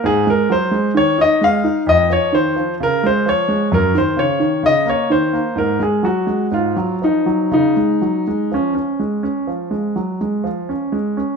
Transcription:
<<
  \new Staff \with { instrumentName = "Grand piano" } { \time 4/4 \key des \major \tempo 4 = 64 aes'16 bes'16 c''8 des''16 ees''16 f''8 ees''16 des''16 c''8 bes'16 c''16 des''8 | bes'16 c''16 des''8 ees''16 des''16 c''8 bes'16 aes'16 ges'8 f'8 ees'8 | ees'4 des'2~ des'8 r8 | }
  \new Staff \with { instrumentName = "Grand piano" } { \clef bass \time 4/4 \key des \major aes,16 aes16 ges16 aes16 ees16 ees'16 aes16 ees'16 f,16 f16 ees16 f16 des16 aes16 f16 aes16 | ges,16 ees16 des16 ees16 des16 bes16 ees16 bes16 aes,16 aes16 ges16 aes16 aes,16 ges16 f16 ges16 | des16 aes16 ges16 aes16 f16 des'16 aes16 des'16 f16 aes16 ges16 aes16 f16 des'16 aes16 des'16 | }
>>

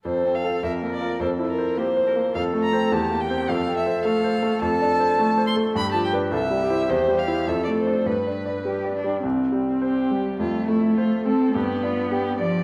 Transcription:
<<
  \new Staff \with { instrumentName = "Violin" } { \time 2/4 \key f \major \tempo 4 = 105 c''8 f''8 e''8 d''8 | c''8 bes'8 c''4 | f''8 bes''8 a''8 g''8 | f''8 e''8 f''4 |
\key c \major a''4. c'''8 | b''16 a''16 g''8 e''4 | c''8 f''8 e''16 d''16 c''8 | b'4. r8 |
r4 g'4 | f'8 e'8 f'8 a'8 | g'8 f'8 g'8 d''8 | }
  \new Staff \with { instrumentName = "Cello" } { \time 2/4 \key f \major a'4 bes'4 | a'4 g'8 bes'8 | a'4 g'4 | a'2~ |
\key c \major a'2 | g'4 a'8 g'8 | g'4 a'4 | b'4 g'8 d'8 |
c'4. g8 | a4. c'8 | b4. f8 | }
  \new Staff \with { instrumentName = "Grand piano" } { \time 2/4 \key f \major \tuplet 3/2 { f,8 c'8 <f' a'>8 f,8 bes8 <f' bes'>8 } | \tuplet 3/2 { f,8 e'8 c''8 bes8 c''8 bes8 } | \tuplet 3/2 { f,8 a8 <c' c''>8 e,8 bes8 <c' c''>8 } | \tuplet 3/2 { f,8 c'8 c''8 a8 c''8 a8 } |
\key c \major \tuplet 3/2 { f,8 d'8 c''8 a8 c''8 a8 } | \tuplet 3/2 { g,8 f8 <d' b'>8 c,8 g8 <e' c''>8 } | \tuplet 3/2 { e,8 g8 <e' c''>8 f,8 a8 <d' d''>8 } | \tuplet 3/2 { g,8 d'8 d''8 g8 d''8 g8 } |
c,8 g8 c''8 g'8 | f,8 a8 c''8 a'8 | g,8 d'8 g'8 d''8 | }
>>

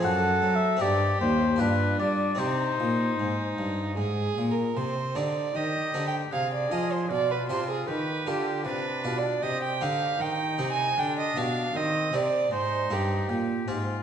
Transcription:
<<
  \new Staff \with { instrumentName = "Violin" } { \time 3/4 \key c \minor \tempo 4 = 77 a'4 g'4 d'4 | ees'2 \tuplet 3/2 { aes'4 bes'8 } | c''8 d''8 \tuplet 3/2 { ees''4 g''8 } f''16 d''16 ees''16 c''16 | d''16 b'16 c''16 aes'16 b'8 g'8 \tuplet 3/2 { b'4 d''8 } |
ees''16 g''16 f''8 \tuplet 3/2 { g''4 aes''8 } g''16 ees''16 f''8 | ees''8 d''8 c''8 g'8 r4 | }
  \new Staff \with { instrumentName = "Oboe" } { \time 3/4 \key c \minor \tuplet 3/2 { fis''4 e''8 } d''8 c''8 b'8 d''8 | c''2 r4 | r4 g'4 aes'4 | f'4 g'4 d'4 |
g'4 ees'4 d'4 | c'8 r8 ees'4 g'8 f'8 | }
  \new Staff \with { instrumentName = "Harpsichord" } { \time 3/4 \key c \minor <c' d' a'>4 <c' ees' g'>4 <d' f' g'>4 | <c' ees' g'>2. | r8 <c' ees' g'>4 <c' ees' g'>8 r8 <d' f' aes'>8 | r8 <d' f' g'>4 <d' f' g'>4 <d' f' g'>8 |
r8 <c' ees' g'>4 <c' ees' g'>8 r8 <b d' g'>8 | r8 <c' g'>4 <c' g'>4 <c' g'>8 | }
  \new Staff \with { instrumentName = "Harpsichord" } { \clef bass \time 3/4 \key c \minor fis,8 fis8 g,8 ees,8 g,8 g8 | c8 bes,8 aes,8 g,8 aes,8 bes,8 | c8 d8 ees8 d8 c8 f8 | b,8 c8 ees8 d8 c8 b,8 |
c8 d8 ees8 c8 d8 b,8 | ees8 c8 aes,8 g,8 bes,8 aes,8 | }
  \new Staff \with { instrumentName = "Cello" } { \clef bass \time 3/4 \key c \minor fis,8 fis8 g,8 ees,8 g,8 g8 | c8 bes,8 aes,8 g,8 aes,8 bes,8 | c8 d8 ees8 d8 c8 f8 | b,8 c8 ees8 d8 c8 b,8 |
c8 d8 ees8 c8 d8 b,8 | ees8 c8 aes,8 g,8 bes,8 aes,8 | }
>>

